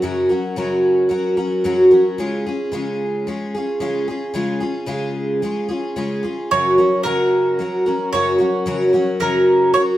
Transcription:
0.02 0.29 F#2 medium
0.02 0.30 C#3 medium
0.02 0.30 F#3 medium
0.02 0.30 C#4 medium
0.02 0.29 F#4 medium
0.02 0.28 A#4 medium
0.29 0.56 F#3 soft
0.29 0.57 C#4 soft
0.29 0.56 F#4 soft
0.29 0.57 A#4 soft
0.56 1.11 F#2 medium
0.56 1.11 C#3 medium
0.56 1.08 F#3 medium
0.56 1.09 C#4 medium
0.56 1.10 F#4 medium
0.56 1.10 A#4 medium
1.09 1.37 F#3 soft
1.09 1.37 C#4 soft
1.09 1.36 F#4 soft
1.09 1.36 A#4 medium
1.37 1.63 F#3 soft
1.37 1.64 C#4 soft
1.37 1.65 F#4 soft
1.37 1.65 A#4 soft
1.64 1.92 F#2 medium
1.64 1.92 C#3 medium
1.64 1.92 F#3 medium
1.64 1.92 C#4 medium
1.64 1.91 F#4 medium
1.64 1.90 A#4 medium
1.91 2.19 F#3 soft
1.91 2.18 C#4 soft
1.91 2.19 F#4 soft
1.91 2.18 A#4 soft
2.18 2.46 C#3 medium
2.18 2.46 G#3 medium
2.18 2.46 C#4 medium
2.18 2.46 F4 medium
2.18 2.45 G#4 medium
2.46 2.72 C#4 soft
2.46 2.73 F4 soft
2.46 2.73 G#4 soft
2.72 3.26 C#3 medium
2.72 3.26 G#3 medium
2.72 3.28 C#4 medium
2.72 3.27 F4 medium
2.72 3.28 G#4 medium
3.27 3.54 G#3 soft
3.27 3.55 C#4 soft
3.27 3.55 F4 soft
3.27 3.53 G#4 soft
3.55 3.80 C#4 soft
3.55 3.81 F4 soft
3.55 3.81 G#4 soft
3.80 4.08 C#3 medium
3.80 4.08 G#3 medium
3.80 4.08 C#4 medium
3.80 4.08 F4 medium
3.80 4.06 G#4 medium
4.08 4.33 C#4 soft
4.08 4.34 F4 soft
4.08 4.34 G#4 soft
4.34 4.61 C#3 medium
4.34 4.62 G#3 medium
4.34 4.61 C#4 medium
4.34 4.60 F4 medium
4.34 4.59 G#4 medium
4.60 4.86 C#4 soft
4.60 4.87 F4 soft
4.60 4.87 G#4 soft
4.86 5.42 C#3 medium
4.86 5.41 G#3 medium
4.86 5.43 C#4 medium
4.86 5.42 F4 medium
4.86 5.43 G#4 medium
5.42 5.70 G#3 soft
5.42 5.70 C#4 soft
5.42 5.69 F4 soft
5.42 5.67 G#4 medium
5.69 5.95 C#4 soft
5.69 5.96 F4 soft
5.69 5.96 G#4 soft
5.96 6.24 C#3 soft
5.96 6.24 G#3 medium
5.96 6.24 C#4 medium
5.96 6.23 F4 medium
5.96 6.22 G#4 medium
6.23 6.52 C#4 soft
6.23 6.51 F4 soft
6.23 6.51 G#4 soft
6.51 6.78 F#2 soft
6.51 6.78 C#3 medium
6.51 6.79 F#3 medium
6.51 6.79 C#4 medium
6.51 6.78 F#4 medium
6.51 6.77 A#4 medium
6.51 7.02 C#5 medium
6.78 7.04 F#3 soft
6.78 7.05 C#4 soft
6.78 7.05 F#4 soft
6.78 7.05 A#4 soft
7.03 7.59 F#2 medium
7.03 7.59 C#3 medium
7.03 7.58 F#3 medium
7.03 7.60 C#4 medium
7.03 7.59 F#4 medium
7.03 8.08 A#4 medium
7.03 7.60 A#4 medium
7.59 7.86 F#3 soft
7.59 7.87 C#4 soft
7.59 7.85 F#4 soft
7.59 7.85 A#4 soft
7.86 8.13 F#3 soft
7.86 8.13 C#4 soft
7.86 8.13 F#4 soft
7.86 8.13 A#4 soft
8.13 8.40 F#2 medium
8.13 8.40 C#3 medium
8.13 8.41 F#3 medium
8.13 8.40 C#4 medium
8.13 8.39 F#4 medium
8.13 8.37 A#4 medium
8.13 9.20 C#5 medium
8.38 8.65 F#3 soft
8.38 8.65 C#4 soft
8.38 8.66 F#4 soft
8.38 8.66 A#4 soft
8.66 8.93 F#2 medium
8.66 8.94 C#3 medium
8.66 8.94 F#3 medium
8.66 8.94 C#4 medium
8.66 8.93 F#4 medium
8.66 8.92 A#4 medium
8.93 9.20 F#3 soft
8.93 9.20 C#4 soft
8.93 9.20 F#4 soft
8.93 9.21 A#4 soft
9.20 9.74 F#2 medium
9.20 9.75 C#3 medium
9.20 9.72 F#3 medium
9.20 9.74 C#4 medium
9.20 9.74 F#4 medium
9.20 9.71 A#4 medium
9.20 9.75 A#4 medium
9.73 9.98 F#3 soft
9.73 9.98 C#4 soft
9.73 9.98 F#4 medium
9.73 9.98 A#4 medium
9.73 9.81 C#5 medium

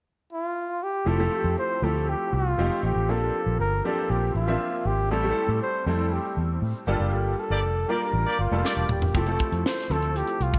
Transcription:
0.33 0.85 F4 medium
0.83 1.09 G4 medium
1.05 1.27 F1 medium
1.05 1.17 F3 medium
1.05 1.18 A3 medium
1.05 1.18 C4 medium
1.05 1.18 E4 medium
1.05 1.18 G4 medium
1.05 1.58 A4 loud
1.19 1.76 F3 medium
1.19 1.77 A3 medium
1.19 1.77 C4 medium
1.19 1.77 E4 medium
1.19 1.77 G4 medium
1.44 1.55 F2 medium
1.59 1.86 C5 medium
1.82 2.14 D2 medium
1.82 2.56 F3 medium
1.82 2.58 A3 medium
1.82 2.57 C4 medium
1.82 2.58 E4 medium
1.82 2.58 G4 medium
1.82 2.10 A4 medium
2.09 2.36 G4 medium
2.33 2.54 C2 medium
2.33 2.84 F4 medium
2.58 2.69 F1 medium
2.58 3.04 F3 medium
2.58 2.64 G#3 soft
2.58 3.04 C4 medium
2.58 3.04 D#4 medium
2.58 3.05 G4 medium
2.64 3.07 A3 medium
2.83 2.94 A1 medium
2.83 3.12 G4 medium
2.96 3.09 A1 medium
3.09 3.29 A#1 medium
3.09 3.78 F3 medium
3.09 3.78 A#3 medium
3.09 3.78 C4 medium
3.09 3.78 D4 medium
3.09 3.78 G4 medium
3.09 3.60 A4 medium
3.46 3.57 A#1 medium
3.59 3.80 G1 medium
3.59 3.87 A#4 medium
3.84 4.42 F3 medium
3.84 4.42 A#3 medium
3.84 4.42 C4 medium
3.84 4.42 D4 medium
3.84 4.42 G4 medium
3.84 4.12 A4 medium
4.10 4.31 A#1 medium
4.10 4.35 G4 medium
4.35 4.56 A1 medium
4.35 4.88 F4 medium
4.47 5.05 F3 medium
4.47 5.05 A#3 medium
4.47 5.05 C4 medium
4.47 5.05 D4 medium
4.47 5.05 E5 medium
4.85 5.10 G#1 medium
4.85 5.11 G4 medium
5.10 5.31 A1 medium
5.10 5.22 G3 medium
5.10 5.22 A3 medium
5.10 5.22 C4 medium
5.10 5.23 E4 medium
5.10 5.23 G4 medium
5.10 5.58 A4 medium
5.23 5.81 G3 medium
5.23 5.81 A3 medium
5.23 5.81 C4 medium
5.23 5.81 E4 medium
5.23 5.30 G4 medium
5.31 5.84 A4 medium
5.49 5.59 A2 medium
5.62 5.85 C5 medium
5.86 6.18 F2 medium
5.86 6.78 G3 medium
5.86 6.79 A3 medium
5.86 6.79 C4 medium
5.86 6.79 E4 medium
5.86 6.14 A4 medium
5.86 6.79 A4 medium
6.13 6.38 G4 medium
6.37 6.58 E2 medium
6.62 6.73 A2 medium
6.87 6.98 G1 medium
6.87 7.79 G3 medium
6.87 7.79 A#3 medium
6.87 7.80 D4 medium
6.87 7.80 F4 medium
6.87 7.41 G4 medium
6.87 7.80 A4 medium
7.00 7.12 F#1 medium
7.12 7.33 G1 medium
7.40 7.91 A4 medium
7.50 7.63 G1 medium
7.50 7.59 A#3 medium
7.50 7.59 G4 medium
7.50 7.59 D5 medium
7.63 7.84 F1 medium
7.88 8.46 G3 medium
7.88 8.46 A#3 medium
7.88 7.99 A#3 medium
7.88 8.46 D4 medium
7.88 8.46 F4 medium
7.88 7.99 G4 medium
7.88 8.46 A#4 medium
7.88 8.39 A#4 medium
7.88 7.99 D5 medium
8.13 8.24 A1 medium
8.26 8.37 A#3 medium
8.26 8.37 G4 medium
8.26 8.37 D5 medium
8.39 8.49 G1 medium
8.39 8.86 F4 medium
8.51 8.62 F1 medium
8.51 9.09 G3 medium
8.51 8.58 A3 soft
8.51 9.09 D4 medium
8.51 9.09 F4 medium
8.51 9.10 A4 medium
8.57 9.12 A#3 medium
8.63 9.00 A#3 medium
8.63 9.00 G4 medium
8.63 9.00 D5 medium
8.63 snare medium
8.77 8.87 E1 medium
8.89 9.02 D#1 medium
8.89 9.14 G4 medium
8.89 mid tom medium
9.02 9.13 E1 medium
9.02 floor tom medium
9.14 9.36 F1 medium
9.14 9.25 F3 medium
9.14 9.25 A3 medium
9.14 9.25 C4 medium
9.14 9.26 E4 medium
9.14 9.27 G4 medium
9.14 9.62 A4 medium
9.14 kick loud
9.14 closed hi-hat medium
9.26 9.85 F3 medium
9.26 9.85 A3 medium
9.26 9.85 C4 medium
9.26 9.85 E4 medium
9.26 9.85 A4 medium
9.26 closed hi-hat soft
9.39 kick loud
9.39 closed hi-hat medium
9.52 9.63 F2 medium
9.52 closed hi-hat medium
9.66 9.93 C5 medium
9.66 snare loud
9.77 snare soft
9.77 closed hi-hat soft
9.90 10.22 D2 medium
9.90 10.59 F3 medium
9.90 10.59 A3 medium
9.90 10.59 C4 medium
9.90 10.59 E4 medium
9.90 10.59 A4 medium
9.90 10.18 A4 medium
9.90 closed hi-hat medium
10.02 closed hi-hat soft
10.16 10.44 G4 medium
10.16 closed hi-hat medium
10.27 closed hi-hat soft
10.40 10.59 C2 medium
10.40 10.59 F4 medium
10.40 closed hi-hat medium
10.53 kick medium
10.53 closed hi-hat medium

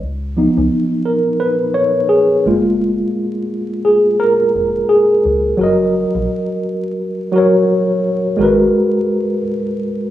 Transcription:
0.02 0.47 C#2 loud
0.37 2.42 F3 medium
0.37 2.42 B3 medium
0.37 2.42 D#4 medium
0.58 0.69 C#2 medium
1.05 1.42 A#4 medium
1.40 1.56 B4 loud
1.74 2.07 C#5 medium
2.09 2.61 G#4 medium
2.46 3.03 F#1 medium
2.46 2.94 G#3 medium
2.46 2.95 A#3 medium
2.46 2.95 F4 medium
3.85 4.17 G#4 medium
4.20 4.85 A#4 loud
4.55 4.84 F1 medium
4.89 5.41 G#4 medium
5.25 5.54 C#2 medium
5.57 6.05 F#1 loud
5.57 6.57 F#3 medium
5.57 6.58 F#4 medium
5.61 6.60 A#4 medium
5.61 6.61 D#5 medium
6.15 6.27 A#1 medium
7.32 8.07 F#3 medium
7.32 8.08 F#4 medium
7.36 8.09 A#4 medium
7.36 8.10 C#5 medium
8.37 8.67 G#1 loud
8.37 9.37 G#3 medium
8.37 9.38 F#4 medium
8.37 9.39 A#4 medium
8.43 9.40 B4 medium

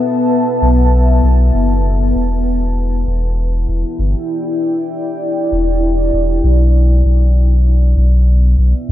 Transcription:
0.00 3.48 B3 medium
0.00 8.92 B4 medium
0.00 3.95 E5 medium
0.00 8.92 F#5 medium
0.00 4.43 A5 medium
0.62 1.21 B1 medium
1.23 1.51 B1 loud
1.54 2.12 F#1 loud
2.15 3.04 E1 medium
2.46 8.57 E4 medium
3.07 3.66 E1 loud
3.18 8.77 D5 medium
3.28 7.36 G5 medium
3.68 3.84 E1 medium
3.99 4.14 G1 medium
5.52 6.10 E1 loud
6.13 6.40 E1 loud
6.44 7.02 B1 loud
7.05 7.94 B1 medium
7.35 8.92 B3 medium
7.97 8.55 B1 loud
8.07 8.92 E5 medium
8.18 8.92 A5 medium
8.58 8.73 B1 medium
8.89 8.92 E2 medium

